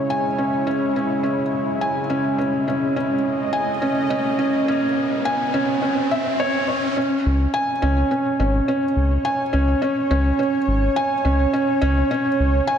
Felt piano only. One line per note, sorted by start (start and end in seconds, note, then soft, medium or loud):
0.00 0.38 C#4 medium
0.00 0.10 G#5 medium
0.10 0.27 G#5 medium
0.38 0.65 C#4 medium
0.67 0.95 C#4 loud
0.96 1.22 C#4 medium
1.23 1.41 C#4 medium
1.81 1.98 G#5 medium
2.10 2.37 C#4 medium
2.38 2.66 C#4 medium
2.68 2.95 C#4 medium
2.96 3.13 C#4 loud
3.53 3.70 G#5 loud
3.82 4.09 C#4 loud
4.10 4.37 C#4 loud
4.39 4.66 C#4 loud
4.68 4.84 C#4 loud
5.25 5.41 G#5 loud
5.54 5.81 C#4 loud
5.82 6.09 C#4 medium
6.11 6.38 E5 medium
6.40 6.67 C#5 loud
6.68 6.84 C#5 medium
6.97 7.13 C#4 medium
7.54 7.70 G#5 loud
7.82 8.09 C#4 loud
8.11 8.38 C#4 loud
8.40 8.67 C#4 medium
8.68 8.84 C#4 medium
9.25 9.41 G#5 loud
9.53 9.80 C#4 loud
9.82 10.09 C#4 loud
10.11 10.38 C#4 loud
10.39 10.56 C#4 loud
10.96 11.13 G#5 loud
11.25 11.52 C#4 loud
11.53 11.80 C#4 loud
11.82 12.09 C#4 loud
12.11 12.27 C#4 loud
12.67 12.78 G#5 loud